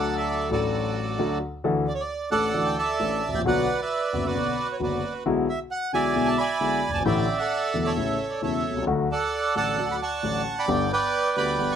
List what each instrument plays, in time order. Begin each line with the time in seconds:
Already playing: grand piano D2 D3 F#3 A3 D4 A4, bandoneon A4 D5 F#5
0.17 bandoneon A4 E5
0.49 grand piano A1 A2 F#3 A3 D4 A4, bandoneon F#4 A4 D5
1.19 grand piano D2 D3 F#3 A3 D4 A4
1.64 grand piano D2 D3 E3 A3 D4 A4
1.87 bandoneon D5
1.94 bandoneon C#5
2.00 bandoneon D5
2.31 grand piano A1 A2 E3 A3 D4 A4, bandoneon A4 D5 F#5
2.54 grand piano D2 D3 E3 A3 D4 A4
2.66 bandoneon G5
2.78 bandoneon D5 E5 A5
3.00 grand piano A1 A2 E3 A3 D4 A4
3.28 grand piano G#1
3.34 grand piano A1, bandoneon G5
3.39 grand piano A#1
3.45 grand piano B1 B2 D3 F#3 B3 F#4, bandoneon B4 D5 F#5
3.82 bandoneon B4 E5
4.13 grand piano F#1 F#2 D3 F#3 B3 F#4
4.26 bandoneon F#4 B4 D5
4.35 grand piano B1 B2 D3 F#3 B3 F#4
4.72 bandoneon C#5
4.80 grand piano F#1 F#2 D3 F#3 B3 F#4, bandoneon F#4 B4 D5
5.26 grand piano B1 B2 D3 G#3 B3 E4
5.50 bandoneon E5
5.71 bandoneon F#5
5.93 grand piano B1 B2 D3 G#3 B3 E4, bandoneon D5 E5 G#5
6.15 grand piano B1 B2 D3 G#3 B3 E4
6.27 bandoneon A5
6.38 bandoneon D5 G#5 B5
6.61 grand piano B1 B2 D3 G#3 B3 E4
6.89 grand piano F#1
6.94 grand piano G1, bandoneon A5
7.00 grand piano G#1
7.05 grand piano A1 A2 D3 E3 A3 E4, bandoneon D5 E5 G5
7.39 bandoneon A4 D5 F#5
7.74 grand piano E1 E2 D3 E3 A3 E4
7.85 bandoneon A4 C#5 E5
7.97 grand piano A1 A2 C#3 E3 A3 E4
8.30 bandoneon D5
8.42 grand piano E1 E2 C#3 E3 A3 E4, bandoneon A4 C#5 E5
8.71 grand piano B1
8.76 grand piano C2
8.82 grand piano C#2
8.87 grand piano D2 D3 F#3 A3 F#4
9.12 bandoneon A4 D5 F#5
9.55 grand piano A1 A2 D3 F#3 A3 F#4, bandoneon D5 F#5 A5
9.78 grand piano D2 D3 F#3 A3 F#4
9.91 bandoneon B5
10.02 bandoneon F#5 A5 C#6
10.23 grand piano A1 A2 D3 F#3 A3 F#4
10.59 bandoneon D5 G5 B5
10.68 grand piano G1 G2 D3 G3 B3 G4
10.93 bandoneon B4 D5 G5
11.36 grand piano D2 D3 G3 B3 G4, bandoneon D5 G5 B5
11.58 grand piano G1 G2 D3 G3 B3 G4
11.72 bandoneon C#6